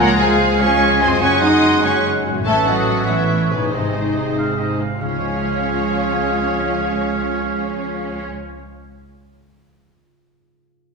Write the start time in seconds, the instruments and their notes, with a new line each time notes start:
Already playing: harp C#3 C#4 F4 G#4, french horn section G#3 F4, violin section A#4, oboe F5
0.00 double bass section C#2, viola section F3 F4, clarinet G#4, flute C#5, violin section A#5
0.19 viola section G#3 G#4, cello section G#3, violin section G#4 G#5, flute C5, trumpet section F5
0.39 viola section F3 F4
0.59 viola section G#3 G#4, cello section C#4, violin section C#5 C#6, flute F5, trumpet section G#5
0.81 viola section F3 F4
1.00 viola section G#3 G#4, cello section C4, violin section C5 C6, flute D#5, trumpet section G#5
1.04 harp F#2
1.08 harp C#4
1.13 harp F#4
1.18 viola section F#3 C#4, harp G#4, violin section C#5 C#6, flute F#5, trumpet section G#5
1.22 double bass section F#1, french horn section G#3 C#4, cello section C#4, oboe F#5
1.41 viola section G#3 F#4, cello section D#4, violin section D#5 D#6, flute F#5, trumpet section C6
1.63 viola section F#3 C#4
1.82 viola section G#3 F#4, cello section C#4, violin section C#5 C#6, flute F#5, trumpet section G#5
2.04 viola section F#3 C#4
2.25 harp A2, viola section G#3 F#4
2.33 harp B3
2.37 harp C#4
2.42 violin section A4 A5, harp B4
2.46 double bass section A1, cello section A3, viola section A3 C#4, french horn section B3, clarinet B4, oboe C#5, flute C#5, trumpet section E5
2.66 cello section F#3, viola section B3 E4, violin section F#4 F#5, flute A4, trumpet section D#5
2.88 viola section A3 C#4
3.07 cello section E3, viola section B3 E4, violin section E4 E5, flute A4, trumpet section C#5
3.29 viola section A3 C#4
3.50 cello section B2, violin section B3 B4, viola section B3 E4, flute D#4, trumpet section G#4
3.55 harp G#2
3.60 harp G#3
3.64 harp D#4
3.68 french horn section G#3 D#4, violin section C5, harp D#5
3.72 double bass section G#1, cello section C3, violin section C4, viola section C4 D#4, flute D#4, clarinet G#4, trumpet section G#4, oboe D#5
3.95 viola section G#3 C4
4.16 viola section C4 D#4
4.37 viola section G#3 C4, oboe F5
4.59 viola section C4 D#4, oboe D#5
4.80 viola section G#3 C4, oboe F5
5.00 double bass section C#2, timpani C#3, harp C#3, viola section F3 C#4, french horn section G#3 F4, violin section C#4 C#5, cello section C#4, flute F4, clarinet G#4, trumpet section C#5, oboe F5
5.09 harp G#3
5.15 harp C#4
5.22 harp F4
5.29 harp C#5
5.37 harp F5